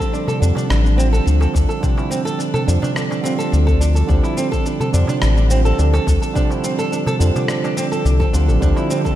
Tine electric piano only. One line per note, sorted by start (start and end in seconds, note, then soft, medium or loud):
0.00 0.37 D3 medium
0.00 0.39 F3 medium
0.00 0.37 G3 medium
0.00 0.38 C4 medium
0.40 0.94 D3 medium
0.40 0.95 F3 medium
0.40 0.94 G3 medium
0.40 0.95 C4 medium
0.96 1.79 D3 medium
0.96 1.79 G3 medium
0.96 1.80 C4 medium
1.00 1.81 F4 medium
1.81 2.63 D3 medium
1.81 2.64 G3 medium
1.81 2.65 C4 medium
1.85 2.65 F3 loud
2.66 3.20 D3 medium
2.66 3.22 F3 medium
2.66 3.21 G3 medium
2.66 3.21 C4 medium
3.22 4.05 D3 medium
3.22 4.05 G3 medium
3.22 4.06 C4 medium
3.22 4.07 F4 medium
4.07 4.90 D3 medium
4.07 4.90 G3 medium
4.07 4.91 C4 medium
4.11 4.92 F3 loud
4.93 5.47 D3 medium
4.93 5.48 F3 medium
4.93 5.47 G3 medium
4.93 5.47 C4 medium
5.48 6.31 D3 medium
5.48 6.32 G3 medium
5.48 6.32 C4 medium
5.53 6.33 F4 medium
6.33 7.16 D3 medium
6.33 7.17 G3 medium
6.33 7.17 C4 medium
6.37 7.18 F3 loud
7.19 7.73 D3 medium
7.19 7.74 F3 medium
7.19 7.73 G3 medium
7.19 7.74 C4 medium
8.33 8.58 D3 medium
8.33 8.59 G3 medium
8.33 8.59 C4 medium
8.33 8.59 F4 medium
8.60 9.15 D3 medium
8.60 9.15 F3 loud
8.60 9.15 G3 medium
8.60 9.15 C4 medium